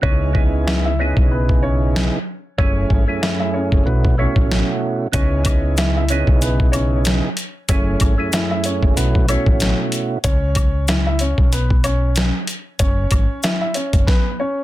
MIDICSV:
0, 0, Header, 1, 5, 480
1, 0, Start_track
1, 0, Key_signature, 4, "minor"
1, 0, Tempo, 638298
1, 24, Time_signature, 4, 2, 24, 8
1, 11007, End_track
2, 0, Start_track
2, 0, Title_t, "Upright piano"
2, 0, Program_c, 0, 0
2, 22, Note_on_c, 0, 73, 107
2, 28, Note_on_c, 0, 61, 81
2, 474, Note_off_c, 0, 73, 0
2, 477, Note_off_c, 0, 61, 0
2, 503, Note_on_c, 0, 76, 72
2, 509, Note_on_c, 0, 64, 59
2, 627, Note_off_c, 0, 76, 0
2, 630, Note_off_c, 0, 64, 0
2, 642, Note_on_c, 0, 76, 78
2, 648, Note_on_c, 0, 64, 59
2, 735, Note_off_c, 0, 76, 0
2, 738, Note_off_c, 0, 64, 0
2, 746, Note_on_c, 0, 73, 72
2, 752, Note_on_c, 0, 61, 60
2, 961, Note_off_c, 0, 73, 0
2, 965, Note_off_c, 0, 61, 0
2, 987, Note_on_c, 0, 71, 68
2, 993, Note_on_c, 0, 59, 59
2, 1202, Note_off_c, 0, 71, 0
2, 1205, Note_off_c, 0, 59, 0
2, 1223, Note_on_c, 0, 73, 88
2, 1229, Note_on_c, 0, 61, 65
2, 1578, Note_off_c, 0, 73, 0
2, 1581, Note_off_c, 0, 61, 0
2, 1942, Note_on_c, 0, 73, 107
2, 1948, Note_on_c, 0, 61, 81
2, 2394, Note_off_c, 0, 73, 0
2, 2397, Note_off_c, 0, 61, 0
2, 2422, Note_on_c, 0, 76, 70
2, 2428, Note_on_c, 0, 64, 59
2, 2545, Note_off_c, 0, 76, 0
2, 2550, Note_off_c, 0, 64, 0
2, 2556, Note_on_c, 0, 76, 78
2, 2562, Note_on_c, 0, 64, 56
2, 2651, Note_off_c, 0, 76, 0
2, 2655, Note_off_c, 0, 64, 0
2, 2660, Note_on_c, 0, 73, 76
2, 2666, Note_on_c, 0, 61, 59
2, 2878, Note_off_c, 0, 73, 0
2, 2881, Note_off_c, 0, 61, 0
2, 2900, Note_on_c, 0, 71, 71
2, 2906, Note_on_c, 0, 59, 53
2, 3118, Note_off_c, 0, 71, 0
2, 3121, Note_off_c, 0, 59, 0
2, 3149, Note_on_c, 0, 73, 81
2, 3155, Note_on_c, 0, 61, 66
2, 3501, Note_off_c, 0, 73, 0
2, 3504, Note_off_c, 0, 61, 0
2, 3864, Note_on_c, 0, 73, 105
2, 3869, Note_on_c, 0, 61, 80
2, 4315, Note_off_c, 0, 73, 0
2, 4318, Note_off_c, 0, 61, 0
2, 4345, Note_on_c, 0, 76, 72
2, 4352, Note_on_c, 0, 64, 54
2, 4468, Note_off_c, 0, 76, 0
2, 4472, Note_off_c, 0, 64, 0
2, 4491, Note_on_c, 0, 76, 81
2, 4498, Note_on_c, 0, 64, 65
2, 4580, Note_off_c, 0, 76, 0
2, 4583, Note_off_c, 0, 64, 0
2, 4588, Note_on_c, 0, 73, 81
2, 4594, Note_on_c, 0, 61, 62
2, 4802, Note_off_c, 0, 73, 0
2, 4806, Note_off_c, 0, 61, 0
2, 4829, Note_on_c, 0, 71, 70
2, 4836, Note_on_c, 0, 59, 56
2, 5043, Note_off_c, 0, 71, 0
2, 5047, Note_off_c, 0, 59, 0
2, 5052, Note_on_c, 0, 73, 87
2, 5058, Note_on_c, 0, 61, 61
2, 5412, Note_off_c, 0, 73, 0
2, 5415, Note_off_c, 0, 61, 0
2, 5787, Note_on_c, 0, 73, 95
2, 5793, Note_on_c, 0, 61, 79
2, 6237, Note_off_c, 0, 73, 0
2, 6240, Note_off_c, 0, 61, 0
2, 6269, Note_on_c, 0, 76, 79
2, 6276, Note_on_c, 0, 64, 59
2, 6388, Note_off_c, 0, 76, 0
2, 6393, Note_off_c, 0, 64, 0
2, 6399, Note_on_c, 0, 76, 76
2, 6404, Note_on_c, 0, 64, 62
2, 6493, Note_off_c, 0, 76, 0
2, 6496, Note_off_c, 0, 64, 0
2, 6508, Note_on_c, 0, 73, 74
2, 6514, Note_on_c, 0, 61, 58
2, 6722, Note_off_c, 0, 73, 0
2, 6726, Note_off_c, 0, 61, 0
2, 6743, Note_on_c, 0, 71, 70
2, 6749, Note_on_c, 0, 59, 57
2, 6960, Note_off_c, 0, 71, 0
2, 6963, Note_off_c, 0, 59, 0
2, 6988, Note_on_c, 0, 73, 80
2, 6993, Note_on_c, 0, 61, 58
2, 7340, Note_off_c, 0, 73, 0
2, 7343, Note_off_c, 0, 61, 0
2, 7701, Note_on_c, 0, 73, 107
2, 7707, Note_on_c, 0, 61, 80
2, 8154, Note_off_c, 0, 73, 0
2, 8157, Note_off_c, 0, 61, 0
2, 8184, Note_on_c, 0, 76, 74
2, 8190, Note_on_c, 0, 64, 59
2, 8307, Note_off_c, 0, 76, 0
2, 8311, Note_off_c, 0, 64, 0
2, 8322, Note_on_c, 0, 76, 77
2, 8329, Note_on_c, 0, 64, 60
2, 8415, Note_off_c, 0, 76, 0
2, 8418, Note_off_c, 0, 64, 0
2, 8426, Note_on_c, 0, 73, 74
2, 8432, Note_on_c, 0, 61, 59
2, 8642, Note_off_c, 0, 73, 0
2, 8645, Note_off_c, 0, 61, 0
2, 8667, Note_on_c, 0, 71, 67
2, 8673, Note_on_c, 0, 59, 59
2, 8882, Note_off_c, 0, 71, 0
2, 8885, Note_off_c, 0, 59, 0
2, 8904, Note_on_c, 0, 73, 88
2, 8910, Note_on_c, 0, 61, 64
2, 9258, Note_off_c, 0, 73, 0
2, 9261, Note_off_c, 0, 61, 0
2, 9622, Note_on_c, 0, 73, 105
2, 9628, Note_on_c, 0, 61, 82
2, 10074, Note_off_c, 0, 73, 0
2, 10077, Note_off_c, 0, 61, 0
2, 10103, Note_on_c, 0, 76, 70
2, 10109, Note_on_c, 0, 64, 55
2, 10225, Note_off_c, 0, 76, 0
2, 10230, Note_off_c, 0, 64, 0
2, 10236, Note_on_c, 0, 76, 77
2, 10242, Note_on_c, 0, 64, 58
2, 10331, Note_off_c, 0, 76, 0
2, 10334, Note_off_c, 0, 64, 0
2, 10339, Note_on_c, 0, 73, 76
2, 10345, Note_on_c, 0, 61, 56
2, 10557, Note_off_c, 0, 73, 0
2, 10561, Note_off_c, 0, 61, 0
2, 10579, Note_on_c, 0, 71, 69
2, 10584, Note_on_c, 0, 59, 57
2, 10797, Note_off_c, 0, 71, 0
2, 10800, Note_off_c, 0, 59, 0
2, 10826, Note_on_c, 0, 73, 83
2, 10832, Note_on_c, 0, 61, 64
2, 11007, Note_off_c, 0, 61, 0
2, 11007, Note_off_c, 0, 73, 0
2, 11007, End_track
3, 0, Start_track
3, 0, Title_t, "Tonewheel organ"
3, 0, Program_c, 1, 16
3, 9, Note_on_c, 1, 49, 89
3, 14, Note_on_c, 1, 59, 86
3, 19, Note_on_c, 1, 63, 84
3, 24, Note_on_c, 1, 64, 81
3, 29, Note_on_c, 1, 68, 97
3, 236, Note_off_c, 1, 49, 0
3, 241, Note_off_c, 1, 59, 0
3, 245, Note_off_c, 1, 63, 0
3, 245, Note_on_c, 1, 49, 93
3, 248, Note_off_c, 1, 64, 0
3, 250, Note_off_c, 1, 68, 0
3, 250, Note_on_c, 1, 59, 81
3, 254, Note_on_c, 1, 63, 85
3, 259, Note_on_c, 1, 64, 86
3, 264, Note_on_c, 1, 68, 103
3, 701, Note_off_c, 1, 49, 0
3, 704, Note_off_c, 1, 59, 0
3, 706, Note_off_c, 1, 63, 0
3, 709, Note_off_c, 1, 64, 0
3, 711, Note_off_c, 1, 68, 0
3, 745, Note_on_c, 1, 49, 88
3, 750, Note_on_c, 1, 59, 80
3, 754, Note_on_c, 1, 63, 81
3, 759, Note_on_c, 1, 64, 89
3, 764, Note_on_c, 1, 68, 101
3, 1638, Note_off_c, 1, 49, 0
3, 1641, Note_off_c, 1, 59, 0
3, 1643, Note_off_c, 1, 63, 0
3, 1646, Note_off_c, 1, 64, 0
3, 1648, Note_off_c, 1, 68, 0
3, 1939, Note_on_c, 1, 42, 97
3, 1943, Note_on_c, 1, 57, 87
3, 1949, Note_on_c, 1, 61, 81
3, 1953, Note_on_c, 1, 64, 83
3, 1958, Note_on_c, 1, 68, 104
3, 2285, Note_off_c, 1, 42, 0
3, 2288, Note_off_c, 1, 57, 0
3, 2290, Note_off_c, 1, 61, 0
3, 2293, Note_off_c, 1, 64, 0
3, 2295, Note_off_c, 1, 68, 0
3, 2305, Note_on_c, 1, 42, 100
3, 2310, Note_on_c, 1, 57, 90
3, 2315, Note_on_c, 1, 61, 83
3, 2320, Note_on_c, 1, 64, 87
3, 2325, Note_on_c, 1, 68, 98
3, 2410, Note_off_c, 1, 42, 0
3, 2414, Note_off_c, 1, 57, 0
3, 2419, Note_off_c, 1, 61, 0
3, 2419, Note_on_c, 1, 42, 93
3, 2423, Note_on_c, 1, 57, 97
3, 2424, Note_off_c, 1, 64, 0
3, 2428, Note_on_c, 1, 61, 86
3, 2429, Note_off_c, 1, 68, 0
3, 2433, Note_on_c, 1, 64, 90
3, 2438, Note_on_c, 1, 68, 98
3, 2881, Note_off_c, 1, 57, 0
3, 2885, Note_on_c, 1, 47, 94
3, 2887, Note_off_c, 1, 61, 0
3, 2890, Note_on_c, 1, 57, 84
3, 2891, Note_off_c, 1, 64, 0
3, 2896, Note_on_c, 1, 61, 87
3, 2900, Note_on_c, 1, 64, 85
3, 2902, Note_off_c, 1, 42, 0
3, 2905, Note_on_c, 1, 66, 101
3, 2911, Note_off_c, 1, 68, 0
3, 3118, Note_off_c, 1, 47, 0
3, 3121, Note_off_c, 1, 57, 0
3, 3123, Note_off_c, 1, 61, 0
3, 3126, Note_off_c, 1, 64, 0
3, 3128, Note_off_c, 1, 66, 0
3, 3138, Note_on_c, 1, 47, 98
3, 3144, Note_on_c, 1, 57, 80
3, 3148, Note_on_c, 1, 61, 85
3, 3153, Note_on_c, 1, 64, 79
3, 3158, Note_on_c, 1, 66, 94
3, 3812, Note_off_c, 1, 47, 0
3, 3815, Note_off_c, 1, 57, 0
3, 3817, Note_off_c, 1, 61, 0
3, 3819, Note_off_c, 1, 64, 0
3, 3822, Note_off_c, 1, 66, 0
3, 3848, Note_on_c, 1, 49, 89
3, 3854, Note_on_c, 1, 59, 82
3, 3858, Note_on_c, 1, 63, 82
3, 3863, Note_on_c, 1, 64, 81
3, 3868, Note_on_c, 1, 68, 95
3, 4074, Note_off_c, 1, 49, 0
3, 4079, Note_off_c, 1, 59, 0
3, 4083, Note_on_c, 1, 49, 91
3, 4084, Note_off_c, 1, 63, 0
3, 4087, Note_off_c, 1, 64, 0
3, 4088, Note_on_c, 1, 59, 79
3, 4090, Note_off_c, 1, 68, 0
3, 4093, Note_on_c, 1, 63, 85
3, 4098, Note_on_c, 1, 64, 81
3, 4103, Note_on_c, 1, 68, 100
3, 4541, Note_off_c, 1, 49, 0
3, 4543, Note_off_c, 1, 59, 0
3, 4546, Note_off_c, 1, 63, 0
3, 4548, Note_off_c, 1, 64, 0
3, 4551, Note_off_c, 1, 68, 0
3, 4585, Note_on_c, 1, 49, 87
3, 4590, Note_on_c, 1, 59, 81
3, 4595, Note_on_c, 1, 63, 80
3, 4600, Note_on_c, 1, 64, 90
3, 4605, Note_on_c, 1, 68, 102
3, 5478, Note_off_c, 1, 49, 0
3, 5481, Note_off_c, 1, 59, 0
3, 5483, Note_off_c, 1, 63, 0
3, 5486, Note_off_c, 1, 64, 0
3, 5488, Note_off_c, 1, 68, 0
3, 5778, Note_on_c, 1, 42, 96
3, 5783, Note_on_c, 1, 57, 87
3, 5788, Note_on_c, 1, 61, 81
3, 5793, Note_on_c, 1, 64, 81
3, 5798, Note_on_c, 1, 68, 104
3, 6125, Note_off_c, 1, 42, 0
3, 6128, Note_off_c, 1, 57, 0
3, 6130, Note_off_c, 1, 61, 0
3, 6133, Note_off_c, 1, 64, 0
3, 6135, Note_off_c, 1, 68, 0
3, 6145, Note_on_c, 1, 42, 97
3, 6150, Note_on_c, 1, 57, 86
3, 6155, Note_on_c, 1, 61, 82
3, 6160, Note_on_c, 1, 64, 86
3, 6165, Note_on_c, 1, 68, 100
3, 6248, Note_off_c, 1, 42, 0
3, 6254, Note_off_c, 1, 57, 0
3, 6257, Note_on_c, 1, 42, 89
3, 6259, Note_off_c, 1, 61, 0
3, 6263, Note_on_c, 1, 57, 95
3, 6264, Note_off_c, 1, 64, 0
3, 6268, Note_on_c, 1, 61, 85
3, 6269, Note_off_c, 1, 68, 0
3, 6273, Note_on_c, 1, 64, 86
3, 6278, Note_on_c, 1, 68, 99
3, 6721, Note_off_c, 1, 57, 0
3, 6726, Note_off_c, 1, 61, 0
3, 6726, Note_on_c, 1, 47, 93
3, 6730, Note_on_c, 1, 57, 86
3, 6731, Note_off_c, 1, 64, 0
3, 6735, Note_on_c, 1, 61, 89
3, 6740, Note_on_c, 1, 64, 83
3, 6741, Note_off_c, 1, 42, 0
3, 6745, Note_on_c, 1, 66, 98
3, 6751, Note_off_c, 1, 68, 0
3, 6958, Note_off_c, 1, 47, 0
3, 6961, Note_off_c, 1, 57, 0
3, 6963, Note_off_c, 1, 61, 0
3, 6966, Note_off_c, 1, 64, 0
3, 6968, Note_off_c, 1, 66, 0
3, 6978, Note_on_c, 1, 47, 100
3, 6983, Note_on_c, 1, 57, 85
3, 6988, Note_on_c, 1, 61, 87
3, 6993, Note_on_c, 1, 64, 84
3, 6998, Note_on_c, 1, 66, 94
3, 7652, Note_off_c, 1, 47, 0
3, 7654, Note_off_c, 1, 57, 0
3, 7657, Note_off_c, 1, 61, 0
3, 7659, Note_off_c, 1, 64, 0
3, 7662, Note_off_c, 1, 66, 0
3, 11007, End_track
4, 0, Start_track
4, 0, Title_t, "Fretless electric bass"
4, 0, Program_c, 2, 35
4, 25, Note_on_c, 2, 37, 109
4, 851, Note_off_c, 2, 37, 0
4, 879, Note_on_c, 2, 35, 89
4, 1570, Note_off_c, 2, 35, 0
4, 1946, Note_on_c, 2, 30, 98
4, 2128, Note_off_c, 2, 30, 0
4, 2184, Note_on_c, 2, 32, 93
4, 2288, Note_off_c, 2, 32, 0
4, 2799, Note_on_c, 2, 30, 86
4, 2879, Note_off_c, 2, 30, 0
4, 2907, Note_on_c, 2, 35, 105
4, 3194, Note_off_c, 2, 35, 0
4, 3279, Note_on_c, 2, 33, 87
4, 3463, Note_off_c, 2, 33, 0
4, 3865, Note_on_c, 2, 37, 105
4, 4691, Note_off_c, 2, 37, 0
4, 4719, Note_on_c, 2, 35, 90
4, 5410, Note_off_c, 2, 35, 0
4, 5785, Note_on_c, 2, 30, 102
4, 5968, Note_off_c, 2, 30, 0
4, 6023, Note_on_c, 2, 32, 92
4, 6128, Note_off_c, 2, 32, 0
4, 6638, Note_on_c, 2, 30, 91
4, 6718, Note_off_c, 2, 30, 0
4, 6746, Note_on_c, 2, 35, 104
4, 7033, Note_off_c, 2, 35, 0
4, 7119, Note_on_c, 2, 33, 89
4, 7303, Note_off_c, 2, 33, 0
4, 7705, Note_on_c, 2, 37, 110
4, 8531, Note_off_c, 2, 37, 0
4, 8558, Note_on_c, 2, 35, 89
4, 9249, Note_off_c, 2, 35, 0
4, 9625, Note_on_c, 2, 30, 102
4, 9808, Note_off_c, 2, 30, 0
4, 9863, Note_on_c, 2, 32, 90
4, 9968, Note_off_c, 2, 32, 0
4, 10479, Note_on_c, 2, 30, 88
4, 10558, Note_off_c, 2, 30, 0
4, 11007, End_track
5, 0, Start_track
5, 0, Title_t, "Drums"
5, 24, Note_on_c, 9, 36, 116
5, 99, Note_off_c, 9, 36, 0
5, 262, Note_on_c, 9, 36, 92
5, 337, Note_off_c, 9, 36, 0
5, 508, Note_on_c, 9, 38, 115
5, 583, Note_off_c, 9, 38, 0
5, 878, Note_on_c, 9, 36, 87
5, 953, Note_off_c, 9, 36, 0
5, 1122, Note_on_c, 9, 36, 88
5, 1198, Note_off_c, 9, 36, 0
5, 1475, Note_on_c, 9, 38, 112
5, 1551, Note_off_c, 9, 38, 0
5, 1944, Note_on_c, 9, 36, 119
5, 2020, Note_off_c, 9, 36, 0
5, 2182, Note_on_c, 9, 36, 95
5, 2258, Note_off_c, 9, 36, 0
5, 2428, Note_on_c, 9, 38, 116
5, 2503, Note_off_c, 9, 38, 0
5, 2798, Note_on_c, 9, 36, 89
5, 2873, Note_off_c, 9, 36, 0
5, 3043, Note_on_c, 9, 36, 85
5, 3118, Note_off_c, 9, 36, 0
5, 3278, Note_on_c, 9, 36, 98
5, 3354, Note_off_c, 9, 36, 0
5, 3396, Note_on_c, 9, 38, 109
5, 3471, Note_off_c, 9, 38, 0
5, 3860, Note_on_c, 9, 42, 98
5, 3863, Note_on_c, 9, 82, 78
5, 3864, Note_on_c, 9, 36, 124
5, 3936, Note_off_c, 9, 42, 0
5, 3938, Note_off_c, 9, 82, 0
5, 3940, Note_off_c, 9, 36, 0
5, 4096, Note_on_c, 9, 42, 81
5, 4102, Note_on_c, 9, 36, 95
5, 4106, Note_on_c, 9, 76, 80
5, 4106, Note_on_c, 9, 82, 59
5, 4171, Note_off_c, 9, 42, 0
5, 4178, Note_off_c, 9, 36, 0
5, 4181, Note_off_c, 9, 76, 0
5, 4181, Note_off_c, 9, 82, 0
5, 4339, Note_on_c, 9, 82, 71
5, 4344, Note_on_c, 9, 42, 90
5, 4348, Note_on_c, 9, 38, 117
5, 4414, Note_off_c, 9, 82, 0
5, 4420, Note_off_c, 9, 42, 0
5, 4423, Note_off_c, 9, 38, 0
5, 4576, Note_on_c, 9, 42, 66
5, 4583, Note_on_c, 9, 82, 43
5, 4651, Note_off_c, 9, 42, 0
5, 4658, Note_off_c, 9, 82, 0
5, 4717, Note_on_c, 9, 36, 86
5, 4793, Note_off_c, 9, 36, 0
5, 4825, Note_on_c, 9, 82, 63
5, 4827, Note_on_c, 9, 42, 91
5, 4900, Note_off_c, 9, 82, 0
5, 4903, Note_off_c, 9, 42, 0
5, 4962, Note_on_c, 9, 36, 87
5, 5037, Note_off_c, 9, 36, 0
5, 5062, Note_on_c, 9, 76, 73
5, 5062, Note_on_c, 9, 82, 53
5, 5063, Note_on_c, 9, 42, 63
5, 5137, Note_off_c, 9, 76, 0
5, 5137, Note_off_c, 9, 82, 0
5, 5138, Note_off_c, 9, 42, 0
5, 5301, Note_on_c, 9, 82, 63
5, 5302, Note_on_c, 9, 42, 91
5, 5315, Note_on_c, 9, 38, 109
5, 5376, Note_off_c, 9, 82, 0
5, 5377, Note_off_c, 9, 42, 0
5, 5390, Note_off_c, 9, 38, 0
5, 5541, Note_on_c, 9, 42, 75
5, 5551, Note_on_c, 9, 82, 52
5, 5616, Note_off_c, 9, 42, 0
5, 5626, Note_off_c, 9, 82, 0
5, 5780, Note_on_c, 9, 42, 97
5, 5782, Note_on_c, 9, 82, 77
5, 5784, Note_on_c, 9, 36, 122
5, 5855, Note_off_c, 9, 42, 0
5, 5858, Note_off_c, 9, 82, 0
5, 5859, Note_off_c, 9, 36, 0
5, 6015, Note_on_c, 9, 42, 84
5, 6022, Note_on_c, 9, 36, 92
5, 6025, Note_on_c, 9, 76, 82
5, 6025, Note_on_c, 9, 82, 57
5, 6090, Note_off_c, 9, 42, 0
5, 6097, Note_off_c, 9, 36, 0
5, 6101, Note_off_c, 9, 76, 0
5, 6101, Note_off_c, 9, 82, 0
5, 6259, Note_on_c, 9, 82, 75
5, 6263, Note_on_c, 9, 42, 89
5, 6267, Note_on_c, 9, 38, 118
5, 6334, Note_off_c, 9, 82, 0
5, 6339, Note_off_c, 9, 42, 0
5, 6342, Note_off_c, 9, 38, 0
5, 6495, Note_on_c, 9, 42, 65
5, 6503, Note_on_c, 9, 82, 44
5, 6570, Note_off_c, 9, 42, 0
5, 6578, Note_off_c, 9, 82, 0
5, 6637, Note_on_c, 9, 36, 85
5, 6712, Note_off_c, 9, 36, 0
5, 6745, Note_on_c, 9, 82, 62
5, 6747, Note_on_c, 9, 42, 93
5, 6820, Note_off_c, 9, 82, 0
5, 6822, Note_off_c, 9, 42, 0
5, 6882, Note_on_c, 9, 36, 85
5, 6957, Note_off_c, 9, 36, 0
5, 6982, Note_on_c, 9, 42, 64
5, 6983, Note_on_c, 9, 76, 75
5, 6983, Note_on_c, 9, 82, 54
5, 7058, Note_off_c, 9, 42, 0
5, 7058, Note_off_c, 9, 76, 0
5, 7058, Note_off_c, 9, 82, 0
5, 7117, Note_on_c, 9, 36, 96
5, 7193, Note_off_c, 9, 36, 0
5, 7220, Note_on_c, 9, 82, 65
5, 7221, Note_on_c, 9, 42, 88
5, 7234, Note_on_c, 9, 38, 110
5, 7295, Note_off_c, 9, 82, 0
5, 7296, Note_off_c, 9, 42, 0
5, 7309, Note_off_c, 9, 38, 0
5, 7460, Note_on_c, 9, 42, 78
5, 7472, Note_on_c, 9, 82, 52
5, 7535, Note_off_c, 9, 42, 0
5, 7547, Note_off_c, 9, 82, 0
5, 7699, Note_on_c, 9, 42, 98
5, 7702, Note_on_c, 9, 82, 80
5, 7703, Note_on_c, 9, 36, 121
5, 7774, Note_off_c, 9, 42, 0
5, 7777, Note_off_c, 9, 82, 0
5, 7779, Note_off_c, 9, 36, 0
5, 7935, Note_on_c, 9, 42, 82
5, 7942, Note_on_c, 9, 36, 93
5, 7945, Note_on_c, 9, 76, 85
5, 7945, Note_on_c, 9, 82, 58
5, 8010, Note_off_c, 9, 42, 0
5, 8017, Note_off_c, 9, 36, 0
5, 8020, Note_off_c, 9, 76, 0
5, 8020, Note_off_c, 9, 82, 0
5, 8179, Note_on_c, 9, 82, 72
5, 8183, Note_on_c, 9, 42, 87
5, 8187, Note_on_c, 9, 38, 121
5, 8254, Note_off_c, 9, 82, 0
5, 8258, Note_off_c, 9, 42, 0
5, 8262, Note_off_c, 9, 38, 0
5, 8415, Note_on_c, 9, 42, 69
5, 8423, Note_on_c, 9, 82, 43
5, 8490, Note_off_c, 9, 42, 0
5, 8498, Note_off_c, 9, 82, 0
5, 8557, Note_on_c, 9, 36, 89
5, 8632, Note_off_c, 9, 36, 0
5, 8665, Note_on_c, 9, 82, 62
5, 8667, Note_on_c, 9, 42, 92
5, 8740, Note_off_c, 9, 82, 0
5, 8742, Note_off_c, 9, 42, 0
5, 8802, Note_on_c, 9, 36, 86
5, 8877, Note_off_c, 9, 36, 0
5, 8903, Note_on_c, 9, 42, 67
5, 8903, Note_on_c, 9, 76, 74
5, 8903, Note_on_c, 9, 82, 53
5, 8978, Note_off_c, 9, 76, 0
5, 8978, Note_off_c, 9, 82, 0
5, 8979, Note_off_c, 9, 42, 0
5, 9140, Note_on_c, 9, 82, 61
5, 9142, Note_on_c, 9, 42, 88
5, 9155, Note_on_c, 9, 38, 112
5, 9215, Note_off_c, 9, 82, 0
5, 9217, Note_off_c, 9, 42, 0
5, 9230, Note_off_c, 9, 38, 0
5, 9381, Note_on_c, 9, 42, 79
5, 9392, Note_on_c, 9, 82, 52
5, 9456, Note_off_c, 9, 42, 0
5, 9468, Note_off_c, 9, 82, 0
5, 9620, Note_on_c, 9, 42, 100
5, 9623, Note_on_c, 9, 82, 79
5, 9624, Note_on_c, 9, 36, 125
5, 9695, Note_off_c, 9, 42, 0
5, 9698, Note_off_c, 9, 82, 0
5, 9699, Note_off_c, 9, 36, 0
5, 9856, Note_on_c, 9, 42, 80
5, 9862, Note_on_c, 9, 36, 90
5, 9865, Note_on_c, 9, 76, 83
5, 9865, Note_on_c, 9, 82, 59
5, 9931, Note_off_c, 9, 42, 0
5, 9937, Note_off_c, 9, 36, 0
5, 9940, Note_off_c, 9, 76, 0
5, 9940, Note_off_c, 9, 82, 0
5, 10099, Note_on_c, 9, 82, 73
5, 10104, Note_on_c, 9, 42, 87
5, 10108, Note_on_c, 9, 38, 119
5, 10174, Note_off_c, 9, 82, 0
5, 10179, Note_off_c, 9, 42, 0
5, 10183, Note_off_c, 9, 38, 0
5, 10335, Note_on_c, 9, 42, 67
5, 10344, Note_on_c, 9, 82, 45
5, 10411, Note_off_c, 9, 42, 0
5, 10419, Note_off_c, 9, 82, 0
5, 10477, Note_on_c, 9, 42, 54
5, 10478, Note_on_c, 9, 36, 88
5, 10552, Note_off_c, 9, 42, 0
5, 10553, Note_off_c, 9, 36, 0
5, 10584, Note_on_c, 9, 36, 110
5, 10590, Note_on_c, 9, 38, 95
5, 10660, Note_off_c, 9, 36, 0
5, 10665, Note_off_c, 9, 38, 0
5, 11007, End_track
0, 0, End_of_file